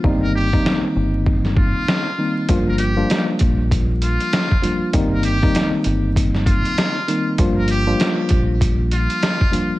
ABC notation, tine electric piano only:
X:1
M:4/4
L:1/16
Q:"Swing 16ths" 1/4=98
K:Gm
V:1 name="Tine electric piano"
[E,G,B,CE]3 [E,G,B,CE]8- [E,G,B,CE]2 z [E,G,B,CE]2 | [F,G,B,DF]3 [F,G,B,DF]8- [F,G,B,DF]2 z [F,G,B,DF]2 | [E,G,B,CE]3 [E,G,B,CE]8- [E,G,B,CE]2 z [E,G,B,CE]2 | [F,G,B,DF]3 [F,G,B,DF]8- [F,G,B,DF]2 z [F,G,B,DF]2 |]